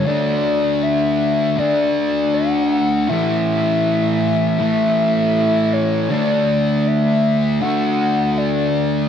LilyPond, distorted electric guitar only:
\new Staff \with { instrumentName = "Distorted electric guitar" } { \time 4/4 \key d \major \tempo 4 = 79 <d a d'>2 <d a d'>2 | <a, e a>2 <a, e a>2 | <d a d'>2 <d a d'>2 | }